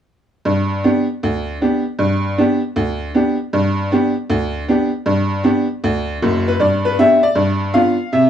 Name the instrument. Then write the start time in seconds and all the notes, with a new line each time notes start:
honky-tonk piano
0.45 G2
0.84 B3 D4 G4
1.23 D2
1.62 B3 D4 G4
1.99 G2
2.38 B3 D4 G4
2.76 D2
3.14 B3 D4 G4
3.53 G2
3.92 B3 D4 G4
4.30 D2
4.68 B3 D4 G4
5.06 G2
5.44 B3 D4 G4
5.84 D2
6.22 F#1 F#2
6.48 B4
6.60 G2 D5
6.85 B4
6.99 B3 D4 G4 E5
7.23 D5
7.35 G2
7.74 B3 D4 F4 F5
8.13 C3 E5